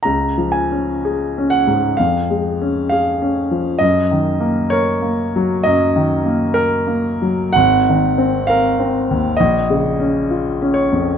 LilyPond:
<<
  \new Staff \with { instrumentName = "Grand piano" } { \time 4/4 \key des \major \tempo 4 = 65 bes''8 aes''4 ges''8 f''4 f''4 | ees''4 des''4 ees''4 bes'4 | ges''4 f''4 ees''4. des''8 | }
  \new Staff \with { instrumentName = "Grand piano" } { \clef bass \time 4/4 \key des \major \tuplet 3/2 { des,8 f8 des'8 aes'8 des'8 aes,8 f,8 aes8 des'8 aes'8 des'8 f8 } | \tuplet 3/2 { ges,8 ees8 bes8 bes'8 bes8 ges8 ges,8 ees8 bes8~ bes8 bes8 ges8 } | \tuplet 3/2 { aes,,8 ees8 c'8 bes'8 c'8 ees,8 bes,,8 des8 des'8 f'8 des'8 f,8 } | }
>>